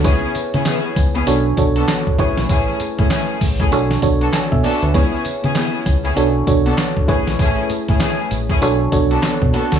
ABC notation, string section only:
X:1
M:4/4
L:1/16
Q:"Swing 16ths" 1/4=98
K:Bdor
V:1 name="String section"
[B,CEG] z2 [B,CEG] [B,CEG] z2 [B,CEG] z3 [B,DFA] z2 [A,CEG] z | [A,CEG] z2 [A,CEG] [A,CEG] z2 [A,CEG] z3 [B,DFA] z2 [B,DFA] z | [B,CEG] z2 [B,CEG] [B,CEG] z2 [B,CEG] z3 [B,DFA] z2 [A,CEG] z | [A,CEG] z2 [A,CEG] [A,CEG] z2 [A,CEG] z3 [B,DFA] z2 [B,DFA] z |]